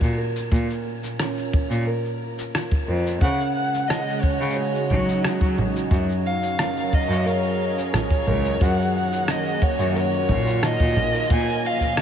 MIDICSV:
0, 0, Header, 1, 6, 480
1, 0, Start_track
1, 0, Key_signature, 6, "major"
1, 0, Tempo, 674157
1, 372, Time_signature, 4, 2, 24, 8
1, 8556, End_track
2, 0, Start_track
2, 0, Title_t, "Violin"
2, 0, Program_c, 0, 40
2, 2287, Note_on_c, 0, 78, 105
2, 2512, Note_off_c, 0, 78, 0
2, 2519, Note_on_c, 0, 78, 86
2, 2759, Note_on_c, 0, 75, 76
2, 2769, Note_off_c, 0, 78, 0
2, 2995, Note_on_c, 0, 73, 75
2, 3006, Note_off_c, 0, 75, 0
2, 3230, Note_off_c, 0, 73, 0
2, 3235, Note_on_c, 0, 73, 75
2, 3695, Note_off_c, 0, 73, 0
2, 4459, Note_on_c, 0, 77, 89
2, 4940, Note_on_c, 0, 75, 77
2, 4950, Note_off_c, 0, 77, 0
2, 5179, Note_on_c, 0, 73, 85
2, 5190, Note_off_c, 0, 75, 0
2, 5647, Note_off_c, 0, 73, 0
2, 5651, Note_on_c, 0, 73, 86
2, 6131, Note_on_c, 0, 78, 91
2, 6142, Note_off_c, 0, 73, 0
2, 6371, Note_off_c, 0, 78, 0
2, 6380, Note_on_c, 0, 78, 85
2, 6621, Note_on_c, 0, 75, 81
2, 6632, Note_off_c, 0, 78, 0
2, 6853, Note_on_c, 0, 73, 81
2, 6864, Note_off_c, 0, 75, 0
2, 7092, Note_off_c, 0, 73, 0
2, 7101, Note_on_c, 0, 73, 95
2, 7582, Note_on_c, 0, 75, 103
2, 7593, Note_off_c, 0, 73, 0
2, 8057, Note_off_c, 0, 75, 0
2, 8069, Note_on_c, 0, 80, 100
2, 8302, Note_on_c, 0, 77, 92
2, 8313, Note_off_c, 0, 80, 0
2, 8550, Note_off_c, 0, 77, 0
2, 8556, End_track
3, 0, Start_track
3, 0, Title_t, "Nylon-string guitar"
3, 0, Program_c, 1, 24
3, 0, Note_on_c, 1, 54, 72
3, 0, Note_on_c, 1, 61, 58
3, 0, Note_on_c, 1, 66, 59
3, 0, Note_on_c, 1, 70, 58
3, 121, Note_off_c, 1, 70, 0
3, 124, Note_on_c, 1, 70, 64
3, 365, Note_off_c, 1, 54, 0
3, 368, Note_on_c, 1, 46, 72
3, 418, Note_off_c, 1, 66, 0
3, 845, Note_off_c, 1, 61, 0
3, 848, Note_on_c, 1, 61, 55
3, 1328, Note_off_c, 1, 70, 0
3, 1331, Note_on_c, 1, 70, 60
3, 1812, Note_on_c, 1, 65, 58
3, 2043, Note_off_c, 1, 70, 0
3, 2052, Note_on_c, 1, 70, 60
3, 2290, Note_off_c, 1, 46, 0
3, 2293, Note_on_c, 1, 49, 76
3, 2340, Note_off_c, 1, 65, 0
3, 2340, Note_off_c, 1, 70, 0
3, 2766, Note_off_c, 1, 61, 0
3, 2768, Note_on_c, 1, 61, 58
3, 3250, Note_on_c, 1, 68, 65
3, 3735, Note_on_c, 1, 66, 60
3, 3963, Note_off_c, 1, 68, 0
3, 3972, Note_on_c, 1, 68, 64
3, 4212, Note_off_c, 1, 49, 0
3, 4217, Note_on_c, 1, 54, 70
3, 4260, Note_off_c, 1, 68, 0
3, 4688, Note_off_c, 1, 61, 0
3, 4691, Note_on_c, 1, 61, 61
3, 5167, Note_on_c, 1, 70, 64
3, 5649, Note_off_c, 1, 66, 0
3, 5652, Note_on_c, 1, 65, 63
3, 5887, Note_off_c, 1, 70, 0
3, 5890, Note_on_c, 1, 70, 64
3, 6130, Note_off_c, 1, 54, 0
3, 6133, Note_on_c, 1, 54, 81
3, 6180, Note_off_c, 1, 65, 0
3, 6609, Note_off_c, 1, 61, 0
3, 6612, Note_on_c, 1, 61, 57
3, 7085, Note_off_c, 1, 70, 0
3, 7087, Note_on_c, 1, 70, 64
3, 7569, Note_on_c, 1, 63, 67
3, 7806, Note_off_c, 1, 70, 0
3, 7809, Note_on_c, 1, 68, 70
3, 7934, Note_off_c, 1, 68, 0
3, 7934, Note_on_c, 1, 70, 57
3, 8052, Note_on_c, 1, 46, 76
3, 8053, Note_off_c, 1, 54, 0
3, 8098, Note_off_c, 1, 63, 0
3, 8101, Note_off_c, 1, 70, 0
3, 8525, Note_off_c, 1, 61, 0
3, 8527, Note_on_c, 1, 61, 58
3, 8556, Note_off_c, 1, 46, 0
3, 8556, Note_off_c, 1, 61, 0
3, 8556, End_track
4, 0, Start_track
4, 0, Title_t, "Analog synth pad"
4, 0, Program_c, 2, 89
4, 2293, Note_on_c, 2, 49, 78
4, 2429, Note_on_c, 2, 56, 65
4, 2930, Note_on_c, 2, 66, 74
4, 3159, Note_on_c, 2, 63, 82
4, 4194, Note_on_c, 2, 54, 76
4, 4212, Note_off_c, 2, 56, 0
4, 4213, Note_off_c, 2, 49, 0
4, 4328, Note_on_c, 2, 61, 80
4, 4440, Note_on_c, 2, 70, 77
4, 4758, Note_on_c, 2, 68, 66
4, 4981, Note_off_c, 2, 63, 0
4, 4983, Note_off_c, 2, 66, 0
4, 6123, Note_off_c, 2, 54, 0
4, 6125, Note_on_c, 2, 51, 65
4, 6385, Note_on_c, 2, 58, 74
4, 6749, Note_off_c, 2, 70, 0
4, 6884, Note_on_c, 2, 66, 70
4, 6893, Note_off_c, 2, 68, 0
4, 6897, Note_off_c, 2, 61, 0
4, 7000, Note_on_c, 2, 65, 94
4, 8048, Note_off_c, 2, 51, 0
4, 8055, Note_off_c, 2, 66, 0
4, 8058, Note_on_c, 2, 46, 65
4, 8182, Note_on_c, 2, 53, 78
4, 8356, Note_on_c, 2, 61, 69
4, 8556, Note_off_c, 2, 46, 0
4, 8556, Note_off_c, 2, 53, 0
4, 8556, Note_off_c, 2, 58, 0
4, 8556, Note_off_c, 2, 61, 0
4, 8556, Note_off_c, 2, 65, 0
4, 8556, End_track
5, 0, Start_track
5, 0, Title_t, "Cello"
5, 0, Program_c, 3, 42
5, 9, Note_on_c, 3, 46, 86
5, 98, Note_off_c, 3, 46, 0
5, 370, Note_on_c, 3, 46, 85
5, 458, Note_off_c, 3, 46, 0
5, 1210, Note_on_c, 3, 46, 88
5, 1298, Note_off_c, 3, 46, 0
5, 2050, Note_on_c, 3, 41, 76
5, 2226, Note_off_c, 3, 41, 0
5, 2290, Note_on_c, 3, 49, 80
5, 2378, Note_off_c, 3, 49, 0
5, 3135, Note_on_c, 3, 49, 89
5, 3221, Note_off_c, 3, 49, 0
5, 3490, Note_on_c, 3, 54, 87
5, 3799, Note_off_c, 3, 54, 0
5, 3850, Note_on_c, 3, 54, 77
5, 3939, Note_off_c, 3, 54, 0
5, 4208, Note_on_c, 3, 42, 89
5, 4297, Note_off_c, 3, 42, 0
5, 5046, Note_on_c, 3, 42, 96
5, 5136, Note_off_c, 3, 42, 0
5, 5890, Note_on_c, 3, 37, 77
5, 6066, Note_off_c, 3, 37, 0
5, 6129, Note_on_c, 3, 42, 92
5, 6218, Note_off_c, 3, 42, 0
5, 6970, Note_on_c, 3, 42, 101
5, 7059, Note_off_c, 3, 42, 0
5, 7325, Note_on_c, 3, 46, 86
5, 7636, Note_off_c, 3, 46, 0
5, 7688, Note_on_c, 3, 46, 85
5, 7777, Note_off_c, 3, 46, 0
5, 8050, Note_on_c, 3, 46, 90
5, 8138, Note_off_c, 3, 46, 0
5, 8556, End_track
6, 0, Start_track
6, 0, Title_t, "Drums"
6, 7, Note_on_c, 9, 36, 83
6, 20, Note_on_c, 9, 82, 30
6, 78, Note_off_c, 9, 36, 0
6, 91, Note_off_c, 9, 82, 0
6, 253, Note_on_c, 9, 82, 62
6, 325, Note_off_c, 9, 82, 0
6, 368, Note_on_c, 9, 36, 99
6, 378, Note_on_c, 9, 82, 52
6, 439, Note_off_c, 9, 36, 0
6, 449, Note_off_c, 9, 82, 0
6, 499, Note_on_c, 9, 82, 31
6, 570, Note_off_c, 9, 82, 0
6, 735, Note_on_c, 9, 82, 64
6, 806, Note_off_c, 9, 82, 0
6, 851, Note_on_c, 9, 37, 82
6, 857, Note_on_c, 9, 82, 48
6, 922, Note_off_c, 9, 37, 0
6, 928, Note_off_c, 9, 82, 0
6, 976, Note_on_c, 9, 82, 31
6, 1047, Note_off_c, 9, 82, 0
6, 1093, Note_on_c, 9, 36, 96
6, 1164, Note_off_c, 9, 36, 0
6, 1218, Note_on_c, 9, 82, 56
6, 1289, Note_off_c, 9, 82, 0
6, 1459, Note_on_c, 9, 82, 28
6, 1530, Note_off_c, 9, 82, 0
6, 1699, Note_on_c, 9, 82, 61
6, 1770, Note_off_c, 9, 82, 0
6, 1815, Note_on_c, 9, 37, 90
6, 1821, Note_on_c, 9, 82, 53
6, 1886, Note_off_c, 9, 37, 0
6, 1892, Note_off_c, 9, 82, 0
6, 1933, Note_on_c, 9, 36, 82
6, 1943, Note_on_c, 9, 82, 30
6, 2004, Note_off_c, 9, 36, 0
6, 2015, Note_off_c, 9, 82, 0
6, 2183, Note_on_c, 9, 82, 62
6, 2254, Note_off_c, 9, 82, 0
6, 2287, Note_on_c, 9, 36, 106
6, 2306, Note_on_c, 9, 82, 53
6, 2358, Note_off_c, 9, 36, 0
6, 2377, Note_off_c, 9, 82, 0
6, 2423, Note_on_c, 9, 82, 31
6, 2494, Note_off_c, 9, 82, 0
6, 2665, Note_on_c, 9, 82, 63
6, 2736, Note_off_c, 9, 82, 0
6, 2778, Note_on_c, 9, 37, 85
6, 2784, Note_on_c, 9, 82, 48
6, 2849, Note_off_c, 9, 37, 0
6, 2856, Note_off_c, 9, 82, 0
6, 2905, Note_on_c, 9, 82, 30
6, 2976, Note_off_c, 9, 82, 0
6, 3012, Note_on_c, 9, 36, 84
6, 3083, Note_off_c, 9, 36, 0
6, 3143, Note_on_c, 9, 82, 56
6, 3205, Note_off_c, 9, 82, 0
6, 3205, Note_on_c, 9, 82, 45
6, 3276, Note_off_c, 9, 82, 0
6, 3380, Note_on_c, 9, 82, 30
6, 3451, Note_off_c, 9, 82, 0
6, 3490, Note_on_c, 9, 36, 50
6, 3496, Note_on_c, 9, 64, 68
6, 3561, Note_off_c, 9, 36, 0
6, 3567, Note_off_c, 9, 64, 0
6, 3621, Note_on_c, 9, 82, 64
6, 3692, Note_off_c, 9, 82, 0
6, 3734, Note_on_c, 9, 37, 90
6, 3741, Note_on_c, 9, 82, 52
6, 3806, Note_off_c, 9, 37, 0
6, 3812, Note_off_c, 9, 82, 0
6, 3852, Note_on_c, 9, 36, 86
6, 3863, Note_on_c, 9, 82, 28
6, 3923, Note_off_c, 9, 36, 0
6, 3934, Note_off_c, 9, 82, 0
6, 3976, Note_on_c, 9, 64, 76
6, 4047, Note_off_c, 9, 64, 0
6, 4100, Note_on_c, 9, 82, 60
6, 4171, Note_off_c, 9, 82, 0
6, 4208, Note_on_c, 9, 36, 100
6, 4220, Note_on_c, 9, 82, 49
6, 4279, Note_off_c, 9, 36, 0
6, 4291, Note_off_c, 9, 82, 0
6, 4336, Note_on_c, 9, 82, 28
6, 4407, Note_off_c, 9, 82, 0
6, 4578, Note_on_c, 9, 82, 62
6, 4649, Note_off_c, 9, 82, 0
6, 4692, Note_on_c, 9, 37, 82
6, 4698, Note_on_c, 9, 82, 47
6, 4763, Note_off_c, 9, 37, 0
6, 4769, Note_off_c, 9, 82, 0
6, 4820, Note_on_c, 9, 82, 28
6, 4891, Note_off_c, 9, 82, 0
6, 4933, Note_on_c, 9, 36, 96
6, 5004, Note_off_c, 9, 36, 0
6, 5059, Note_on_c, 9, 82, 56
6, 5131, Note_off_c, 9, 82, 0
6, 5179, Note_on_c, 9, 82, 44
6, 5250, Note_off_c, 9, 82, 0
6, 5299, Note_on_c, 9, 82, 29
6, 5370, Note_off_c, 9, 82, 0
6, 5538, Note_on_c, 9, 82, 65
6, 5610, Note_off_c, 9, 82, 0
6, 5652, Note_on_c, 9, 37, 89
6, 5652, Note_on_c, 9, 64, 79
6, 5659, Note_on_c, 9, 82, 53
6, 5724, Note_off_c, 9, 37, 0
6, 5724, Note_off_c, 9, 64, 0
6, 5730, Note_off_c, 9, 82, 0
6, 5770, Note_on_c, 9, 36, 96
6, 5777, Note_on_c, 9, 82, 31
6, 5841, Note_off_c, 9, 36, 0
6, 5848, Note_off_c, 9, 82, 0
6, 5891, Note_on_c, 9, 64, 76
6, 5962, Note_off_c, 9, 64, 0
6, 6017, Note_on_c, 9, 82, 55
6, 6088, Note_off_c, 9, 82, 0
6, 6130, Note_on_c, 9, 36, 101
6, 6140, Note_on_c, 9, 82, 48
6, 6202, Note_off_c, 9, 36, 0
6, 6211, Note_off_c, 9, 82, 0
6, 6259, Note_on_c, 9, 82, 31
6, 6330, Note_off_c, 9, 82, 0
6, 6498, Note_on_c, 9, 82, 65
6, 6569, Note_off_c, 9, 82, 0
6, 6608, Note_on_c, 9, 37, 90
6, 6614, Note_on_c, 9, 82, 48
6, 6679, Note_off_c, 9, 37, 0
6, 6686, Note_off_c, 9, 82, 0
6, 6733, Note_on_c, 9, 82, 30
6, 6804, Note_off_c, 9, 82, 0
6, 6848, Note_on_c, 9, 36, 92
6, 6920, Note_off_c, 9, 36, 0
6, 6972, Note_on_c, 9, 82, 56
6, 7043, Note_off_c, 9, 82, 0
6, 7091, Note_on_c, 9, 82, 49
6, 7162, Note_off_c, 9, 82, 0
6, 7213, Note_on_c, 9, 82, 29
6, 7284, Note_off_c, 9, 82, 0
6, 7326, Note_on_c, 9, 36, 53
6, 7326, Note_on_c, 9, 64, 78
6, 7397, Note_off_c, 9, 64, 0
6, 7398, Note_off_c, 9, 36, 0
6, 7453, Note_on_c, 9, 82, 57
6, 7524, Note_off_c, 9, 82, 0
6, 7568, Note_on_c, 9, 37, 96
6, 7574, Note_on_c, 9, 82, 50
6, 7639, Note_off_c, 9, 37, 0
6, 7645, Note_off_c, 9, 82, 0
6, 7689, Note_on_c, 9, 36, 98
6, 7694, Note_on_c, 9, 82, 29
6, 7760, Note_off_c, 9, 36, 0
6, 7765, Note_off_c, 9, 82, 0
6, 7807, Note_on_c, 9, 64, 74
6, 7878, Note_off_c, 9, 64, 0
6, 7934, Note_on_c, 9, 82, 58
6, 7996, Note_off_c, 9, 82, 0
6, 7996, Note_on_c, 9, 82, 45
6, 8047, Note_on_c, 9, 36, 99
6, 8056, Note_off_c, 9, 82, 0
6, 8056, Note_on_c, 9, 82, 50
6, 8114, Note_off_c, 9, 82, 0
6, 8114, Note_on_c, 9, 82, 33
6, 8119, Note_off_c, 9, 36, 0
6, 8170, Note_off_c, 9, 82, 0
6, 8170, Note_on_c, 9, 82, 31
6, 8242, Note_off_c, 9, 82, 0
6, 8406, Note_on_c, 9, 36, 46
6, 8413, Note_on_c, 9, 82, 62
6, 8477, Note_off_c, 9, 36, 0
6, 8484, Note_off_c, 9, 82, 0
6, 8525, Note_on_c, 9, 37, 93
6, 8531, Note_on_c, 9, 82, 50
6, 8556, Note_off_c, 9, 37, 0
6, 8556, Note_off_c, 9, 82, 0
6, 8556, End_track
0, 0, End_of_file